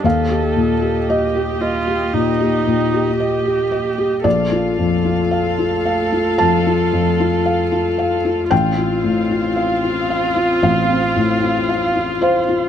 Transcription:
<<
  \new Staff \with { instrumentName = "Viola" } { \time 4/4 \key bes \major \tempo 4 = 57 a'4 g'8 f'8 ees'4 g'4 | a'1 | f'1 | }
  \new Staff \with { instrumentName = "Felt piano" } { \time 4/4 \key bes \major << { f''4 ees''2~ ees''8 r8 | d''2 a''2 | g''2 f''4. c''8 | } \\ { ees,16 g'16 bes,16 g'8 g'16 ees''16 g'16 bes,16 g'16 bes,16 g'16 ees''16 g'16 ees''16 g'16 | bes,,16 f'16 f,16 f'16 f''16 f'16 f''16 f'16 f,16 f'16 f,16 f'16 f''16 f'16 f''16 f'16 | a,,16 f'16 a,16 f'16 f''16 f'16 f''16 f'16 a,,16 c'16 a,16 f'16 f''16 f'16 f''16 f'16 | } >> }
  \new Staff \with { instrumentName = "String section" } { \time 4/4 \key bes \major <bes g' ees''>1 | <a f' f''>1 | <c' f' f''>1 | }
>>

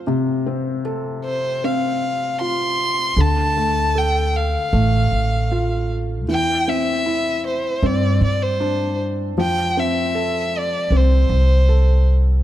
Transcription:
<<
  \new Staff \with { instrumentName = "Violin" } { \time 4/4 \key f \major \tempo 4 = 77 r4. c''8 f''4 c'''4 | a''4 g''8 f''2 r8 | g''8 e''4 c''8 d''8 d''16 c''8. r8 | g''8 e''4 d''8 c''4. r8 | }
  \new Staff \with { instrumentName = "Felt piano" } { \time 4/4 \key f \major <c f'>8 c'8 a'4 c'4 f'4 | d8 a8 a'4 a4 f'4 | e8 c'8 e'4 c'4 d'4 | f8 c'8 a'4 c'4 a'4 | }
  \new Staff \with { instrumentName = "Upright bass" } { \clef bass \time 4/4 \key f \major r1 | d,2 a,,8 a,,4. | e,2 g,8 g,4. | f,2 c,8 c,4. | }
>>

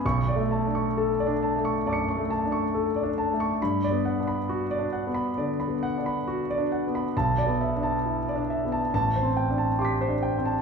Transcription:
<<
  \new Staff \with { instrumentName = "Grand piano" } { \time 4/4 \key b \dorian \tempo 4 = 68 << { cis'''8 r4. <a'' d''' cis''''>2 | b''8 r2. r8 | a''8 r4. a''8 r8 <c''' d''' b'''>4 | } \\ { r16 d''16 a''16 cis'''16 a'16 d''16 a''16 cis'''16 d''16 cis'''16 a''16 cis'''16 a'16 d''16 a''16 cis'''16 | r16 d''16 fis''16 b''16 fis'16 d''16 fis''16 b''16 d''16 b''16 fis''16 b''16 fis'16 d''16 fis''16 b''16 | r16 d''16 e''16 a''16 e'16 d''16 e''16 a''16 r16 c''16 g''16 a''16 g'16 c''16 g''16 a''16 | } >> }
  \new Staff \with { instrumentName = "Grand piano" } { \time 4/4 \key b \dorian \tuplet 3/2 { b,,8 a8 d'8~ d'8 d'8 a8 fis,8 a8 d'8~ d'8 d'8 a8 } | \tuplet 3/2 { g,8 b8 d'8~ d'8 d'8 b8 d8 b8 d'8~ d'8 d'8 b8 } | \tuplet 3/2 { b,,8 b8 d'8~ d'8 d'8 b8 a,,8 c'8 d'8~ d'8 d'8 c'8 } | }
>>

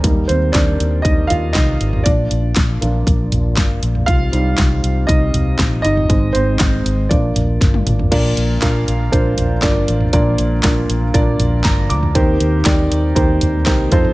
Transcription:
<<
  \new Staff \with { instrumentName = "Upright piano" } { \time 4/4 \key bes \mixolydian \tempo 4 = 119 << { r8 <c' c''>8 <d' d''>4 <ees' ees''>8 <f' f''>8 <ees' ees''>4 | <d' d''>2. r4 | <f' f''>4. r8 <ees' ees''>4 r8 <ees' ees''>8~ | <ees' ees''>8 <c' c''>4. d''4. r8 |
r1 | r2. bes''8 d'''8~ | d'''8 r2. r8 | } \\ { r1 | r1 | r1 | r1 |
<d' f' bes' d''>4 <d' f' bes' f''>4 <d' f' bes' c''>4 <d' f' bes' d''>4 | <d' f' bes' d''>4 <d' f' bes' d''>4 <d' f' bes' d''>4 r4 | <ees' g' bes' c''>4 <ees' g' bes' d''>4 <ees' g' bes' c''>4 <ees' g' bes' c''>8 <ees' f' a' c''>8 | } >> }
  \new Staff \with { instrumentName = "Upright piano" } { \time 4/4 \key bes \mixolydian <g bes ees'>8 r2. r8 | r4. <f bes d'>4. r4 | r8 <g c' ees'>4. r2 | <aes c' ees'>4. r8 <f bes d'>4. r8 |
bes,4. r2 r8 | bes,4. r2 r8 | ees4. r2 r8 | }
  \new Staff \with { instrumentName = "Tonewheel organ" } { \time 4/4 \key bes \mixolydian <ees g' bes'>1 | <bes d' f'>1 | <c c' ees' g'>1 | <aes ees'>2 <f bes d'>2 |
<f bes d'>1~ | <f bes d'>1 | <ees bes c' g'>2.~ <ees bes c' g'>8 <f ees' a'>8 | }
  \new Staff \with { instrumentName = "Fingered electric bass" } { \clef bass \time 4/4 \key bes \mixolydian ees,8 ees,8 ees,8 ees,8 ees,8 ees,8 c,8 aes,,8 | bes,,8 bes,,8 bes,,8 bes,,8 bes,,8 bes,,8 g,,8 bes,,8 | c,8 c,8 c,8 c,8 c,8 c,8 bes,,8 g,,8 | aes,,8 aes,,8 aes,,8 aes,,8 bes,,8 bes,,8 g,,8 aes,,8 |
bes,,8 bes,,8 bes,,8 bes,,8 bes,,8 bes,,8 g,,8 a,,8 | bes,,8 bes,,8 bes,,8 bes,,8 bes,,8 bes,,8 g,,8 d,8 | ees,8 ees,8 ees,8 ees,8 ees,8 ees,8 c,8 f,8 | }
  \new DrumStaff \with { instrumentName = "Drums" } \drummode { \time 4/4 <hh bd>8 hh8 <hc hh bd sn>8 hh8 <hh bd>8 <hh tomfh>8 <hc hh bd sn>8 hh16 tomfh16 | <hh bd>8 hh8 <hc hh bd sn>8 hh8 <hh bd>8 <hh tomfh>8 <hc hh bd sn>8 hh16 tomfh16 | <hh bd>8 hh8 <hc hh bd sn>8 hh8 <hh bd>8 <hh tomfh>8 <hc hh bd sn>8 hh16 tomfh16 | <hh bd>8 hh8 <hc hh bd sn>8 hh8 <hh bd>8 <hh tomfh>8 <hh bd sn>16 tommh16 <hh toml>16 tomfh16 |
<cymc hh bd>8 hh8 <hc hh bd sn>8 hh8 <hh bd>8 <hh tomfh>8 <hc hh bd sn>8 hh16 tomfh16 | <hh bd>8 hh8 <hc hh bd sn>8 hh8 <hh bd>8 <hh tomfh>8 <hc hh bd sn>8 hh16 tomfh16 | <hh bd>8 hh8 <hc hh bd sn>8 hh8 <hh bd>8 <hh tomfh>8 <hc hh bd sn>8 <hh bd>16 tomfh16 | }
>>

